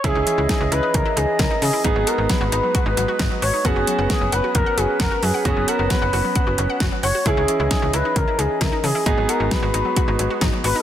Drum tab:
HH |xxxxxxxo|xxxxxxxo|xxxxxxxo|xxxoxxxo|
SD |--o---o-|--o---o-|--o---o-|--o---o-|
BD |o-o-o-o-|o-o-o-o-|o-o-o-o-|o-o-o-o-|

HH |xxxxxxxo|xxxxxxxo|
SD |--o---o-|--o---o-|
BD |o-o-o-o-|o-o-o-o-|